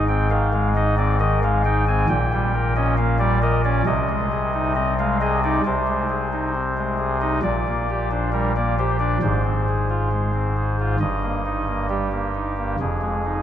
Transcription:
0.00 2.05 G#1 loud
0.00 2.05 G#2 medium
0.08 0.28 C4 medium
0.08 0.27 G5 loud
0.31 0.51 D#3 medium
0.31 0.69 F5 loud
0.53 0.73 G#3 medium
0.75 0.95 D#4 medium
0.75 0.95 D#5 loud
0.97 1.18 C4 medium
0.97 1.17 D5 loud
1.20 1.40 D#3 medium
1.20 1.39 D#5 loud
1.43 1.63 G#3 medium
1.43 1.62 F5 loud
1.65 1.85 D#4 medium
1.65 1.84 G5 loud
1.87 2.06 C4 medium
1.87 2.07 G#5 loud
2.09 3.82 A#1 loud
2.09 3.82 A#2 medium
2.09 2.74 G5 loud
2.33 2.52 G3 medium
2.54 2.74 A#4 medium
2.76 2.96 C#4 medium
2.76 2.95 D#5 loud
2.98 3.18 A#3 medium
2.98 3.17 F5 loud
3.19 3.39 G3 medium
3.19 3.38 D5 loud
3.42 3.62 A#4 medium
3.42 3.61 D#5 loud
3.64 3.83 C#4 medium
3.64 3.83 D5 loud
3.86 5.60 C2 loud
3.86 5.60 C3 loud
3.86 4.73 D#5 loud
4.09 4.29 G#3 medium
4.31 4.51 G#4 medium
4.54 4.73 D#4 medium
4.75 4.95 C4 medium
4.75 4.94 D#5 loud
4.99 5.19 G#3 medium
4.99 5.18 F5 loud
5.21 5.40 G#4 medium
5.21 5.40 D#5 loud
5.44 5.62 D#4 medium
5.44 5.62 D5 loud
5.66 7.40 C2 loud
5.66 7.40 C3 loud
5.66 7.18 C5 loud
5.87 6.07 G#3 medium
6.09 6.29 G#4 medium
6.33 6.52 D#4 medium
6.55 6.74 C4 medium
6.78 6.97 G#3 medium
6.98 7.18 G#4 medium
7.21 7.40 D#4 medium
7.21 7.40 D#5 loud
7.42 9.17 A#1 loud
7.42 9.17 A#2 loud
7.42 8.08 D5 loud
7.68 7.87 A#3 medium
7.90 8.09 G4 medium
8.11 8.31 D4 medium
8.11 8.30 C5 loud
8.33 8.53 G3 medium
8.33 8.52 A#4 loud
8.56 8.76 A#3 medium
8.56 8.75 D5 loud
8.79 8.98 G4 medium
8.79 8.97 C5 loud
9.00 9.18 D4 medium
9.00 9.18 D5 loud
9.22 10.96 G#1 medium
9.22 10.96 G#2 medium
9.22 10.96 C5 loud
9.45 9.64 C4 medium
9.68 9.87 G#4 medium
9.90 10.09 F4 medium
10.12 10.31 G#3 medium
10.34 10.54 C4 medium
10.56 10.76 G#4 medium
10.80 10.98 F4 medium
11.00 12.75 G1 medium
11.00 12.75 G2 medium
11.00 11.86 D#5 loud
11.23 11.42 A#3 medium
11.46 11.65 D#4 medium
11.68 11.87 A#3 medium
11.89 12.09 G3 medium
11.89 12.76 G4 loud
12.12 12.32 A#3 medium
12.35 12.54 D#4 medium
12.57 12.76 A#3 medium
12.80 13.42 F1 medium
12.80 13.42 F2 medium
12.80 13.42 G#4 loud
13.01 13.22 G#3 medium
13.25 13.42 D#4 medium

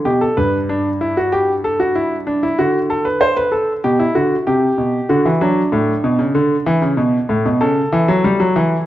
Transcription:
0.05 0.25 B2 medium
0.05 0.20 G4 medium
0.21 0.36 A4 medium
0.37 2.54 G2 medium
0.37 0.57 B4 medium
0.69 0.89 D4 medium
1.01 1.16 E4 medium
1.17 1.32 F#4 medium
1.33 1.52 G4 medium
1.64 1.79 A4 medium
1.80 1.95 F#4 medium
1.96 2.15 E4 medium
2.27 2.42 D4 medium
2.43 2.58 E4 medium
2.59 3.81 D3 medium
2.59 2.78 F#4 medium
2.90 3.05 A4 medium
3.05 3.21 B4 medium
3.21 3.36 C5 medium
3.37 3.52 B4 medium
3.52 3.72 A4 medium
3.84 4.04 B2 medium
3.84 3.99 G4 medium
4.00 4.15 E4 medium
4.15 4.35 D3 medium
4.15 4.35 F#4 medium
4.47 4.66 C3 medium
4.47 5.08 G4 medium
4.78 4.97 B2 medium
5.09 5.25 D3 medium
5.09 5.29 F#4 medium
5.25 5.40 E3 medium
5.41 5.60 F#3 medium
5.41 7.57 D4 medium
5.72 5.91 A2 medium
6.04 6.19 B2 medium
6.19 6.34 C#3 medium
6.35 6.54 D3 medium
6.66 6.82 E3 medium
6.82 6.97 C#3 medium
6.97 7.17 B2 medium
7.29 7.44 A2 medium
7.45 7.60 B2 medium
7.61 7.80 C#3 medium
7.61 8.84 A4 medium
7.92 8.08 E3 medium
8.08 8.24 F#3 medium
8.24 8.40 G3 medium
8.40 8.55 F#3 medium
8.56 8.76 E3 medium

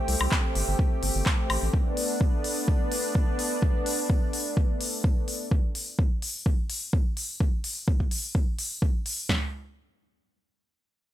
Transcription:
0.00 5.47 A3 medium
0.00 1.69 C4 medium
0.00 1.69 G4 medium
0.08 0.16 C2 medium
0.08 open hi-hat loud
0.21 0.28 C2 medium
0.21 high woodblock medium
0.31 kick loud
0.31 clap loud
0.55 0.63 G1 medium
0.55 open hi-hat medium
0.68 0.75 G1 medium
0.79 kick loud
1.03 1.10 G1 loud
1.03 open hi-hat loud
1.15 1.22 G1 medium
1.26 kick loud
1.26 clap loud
1.50 1.58 A1 medium
1.50 open hi-hat medium
1.50 high woodblock medium
1.62 1.69 A1 medium
1.73 5.48 B3 medium
1.73 5.48 D4 medium
1.73 kick loud
1.97 open hi-hat loud
2.21 kick loud
2.44 open hi-hat medium
2.68 kick loud
2.92 open hi-hat loud
3.15 kick loud
3.39 open hi-hat medium
3.62 kick loud
3.86 open hi-hat loud
4.10 kick loud
4.33 open hi-hat medium
4.57 kick loud
4.81 open hi-hat loud
5.04 kick loud
5.28 open hi-hat medium
5.51 kick loud
5.75 open hi-hat medium
5.99 kick loud
6.22 open hi-hat medium
6.46 kick loud
6.70 open hi-hat loud
6.93 kick loud
7.17 open hi-hat medium
7.40 kick loud
7.64 open hi-hat loud
7.88 kick loud
8.00 kick medium
8.11 open hi-hat medium
8.35 kick loud
8.59 open hi-hat loud
8.82 kick loud
9.06 open hi-hat medium
9.29 snare medium
9.29 floor tom loud

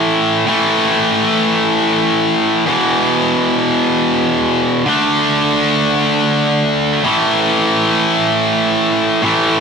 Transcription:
0.00 0.45 A2 medium
0.00 0.48 E3 medium
0.00 0.47 A3 medium
0.47 2.64 A2 medium
0.47 2.65 E3 medium
0.47 2.65 A3 medium
2.66 4.83 E2 medium
2.66 4.84 B2 medium
2.66 4.84 E3 medium
4.86 7.02 D3 medium
4.86 7.03 A3 medium
4.86 7.04 D4 medium
7.04 9.20 A2 medium
7.04 9.24 E3 medium
7.04 9.22 A3 medium
9.22 9.60 A2 medium
9.22 9.60 E3 medium
9.22 9.60 A3 medium

